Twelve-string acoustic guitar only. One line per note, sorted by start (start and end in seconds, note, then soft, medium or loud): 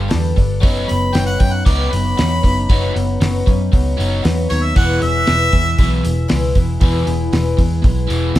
0.08 0.36 G3 medium
0.08 0.37 B3 medium
0.08 0.37 D4 medium
0.08 0.36 A4 loud
0.37 0.60 B3 soft
0.37 0.62 D4 soft
0.37 0.61 A4 medium
0.60 1.14 F#3 medium
0.60 1.14 C#4 medium
0.60 1.14 D#4 medium
0.60 1.16 B4 medium
1.15 1.41 F#3 medium
1.15 1.41 C#4 medium
1.15 1.40 D#4 medium
1.15 1.40 B4 medium
1.41 1.65 C#4 soft
1.41 1.65 D#4 soft
1.41 1.66 B4 medium
1.65 2.15 F#3 medium
1.65 2.16 C#4 medium
1.65 2.17 D#4 medium
1.65 2.17 B4 medium
2.16 2.43 F#3 medium
2.16 2.43 C#4 medium
2.16 2.43 D#4 medium
2.16 2.41 B4 medium
2.42 2.70 C#4 soft
2.42 2.70 D#4 soft
2.42 2.69 B4 medium
2.70 3.21 F#3 medium
2.70 3.21 C#4 medium
2.70 3.21 D#4 medium
2.70 3.22 B4 loud
3.22 3.47 F#3 medium
3.22 3.48 C#4 medium
3.22 3.48 D#4 medium
3.22 3.47 B4 loud
3.48 3.71 C#4 soft
3.48 3.72 D#4 medium
3.48 3.73 B4 medium
3.72 4.21 F#3 medium
3.72 4.22 C#4 medium
3.72 4.22 D#4 medium
3.72 4.24 B4 medium
4.22 4.49 F#3 medium
4.22 4.50 C#4 medium
4.22 4.50 D#4 medium
4.22 4.49 B4 medium
4.50 4.77 C#4 soft
4.50 4.76 D#4 soft
4.50 4.76 B4 soft
4.75 5.26 E2 medium
4.75 5.26 E3 medium
4.75 5.26 G#3 medium
4.75 5.28 B3 medium
4.75 5.27 E4 medium
4.75 5.27 G#4 medium
5.27 5.53 E2 medium
5.27 5.53 E3 medium
5.27 5.53 G#3 medium
5.27 5.53 B3 medium
5.27 5.51 E4 medium
5.27 5.50 G#4 medium
5.52 5.76 G#3 soft
5.52 5.77 B3 soft
5.52 5.78 E4 soft
5.52 5.78 G#4 medium
5.77 6.27 G#3 medium
5.77 6.28 B3 medium
5.77 6.28 E4 medium
5.77 6.28 G#4 medium
6.28 6.55 E2 medium
6.28 6.55 E3 medium
6.28 6.55 G#3 medium
6.28 6.55 B3 loud
6.28 6.55 E4 medium
6.28 6.54 G#4 loud
6.55 6.81 G#3 soft
6.55 6.81 B3 soft
6.55 6.81 E4 medium
6.55 6.81 G#4 medium
6.81 7.33 E2 medium
6.81 7.33 E3 medium
6.81 7.33 G#3 medium
6.81 7.34 B3 loud
6.81 7.34 E4 medium
6.81 7.33 G#4 loud
7.34 7.60 E2 medium
7.34 7.60 E3 medium
7.34 7.60 G#3 medium
7.34 7.60 B3 medium
7.34 7.59 E4 medium
7.34 7.58 G#4 medium
7.60 7.84 G#3 medium
7.60 7.84 B3 medium
7.60 7.85 E4 medium
7.60 7.85 G#4 medium
7.85 8.36 G#3 medium
7.85 8.36 B3 medium
7.85 8.35 E4 medium
7.85 8.35 G#4 medium
8.36 8.39 E2 medium